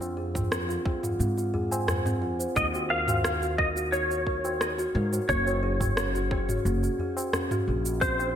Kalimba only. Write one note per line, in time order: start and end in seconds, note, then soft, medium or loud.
0.01 0.16 F4 medium
0.17 0.34 G#4 medium
0.35 0.51 F4 medium
0.51 0.62 C4 medium
0.69 0.85 F4 medium
0.86 1.02 G#4 medium
1.03 1.13 F4 loud
1.19 1.36 C4 medium
1.38 1.53 F4 medium
1.54 1.70 G#4 medium
1.72 1.87 G#5 medium
1.88 2.05 C5 medium
2.05 2.21 C4 loud
2.22 2.39 F4 medium
2.40 2.54 C5 medium
2.74 2.89 F#4 medium
2.90 3.07 A#4 medium
3.08 3.23 F#4 medium
3.24 3.34 D#4 medium
3.42 3.58 F#4 medium
3.58 3.74 A#4 medium
3.76 3.85 F#4 loud
3.92 4.08 D#4 medium
4.10 4.26 F#4 medium
4.27 4.44 A#4 medium
4.44 4.60 F#4 medium
4.61 4.71 D#4 medium
4.78 4.93 F#4 loud
4.95 5.11 A#4 medium
5.13 5.28 F#4 medium
5.29 5.39 C#4 medium
5.47 5.62 F#4 medium
5.63 5.80 G#4 medium
5.81 5.96 F#4 medium
5.97 6.07 C#4 medium
6.15 6.30 F#4 medium
6.31 6.47 G#4 medium
6.49 6.58 F#4 loud
6.66 6.81 C#4 medium
6.83 6.99 F#4 medium
7.00 7.16 G#4 medium
7.17 7.33 F#4 medium
7.34 7.44 C#4 medium
7.52 7.66 F#4 loud
7.68 7.84 G#4 medium
7.85 8.01 F#4 medium
8.02 8.12 C4 medium
8.19 8.35 D4 medium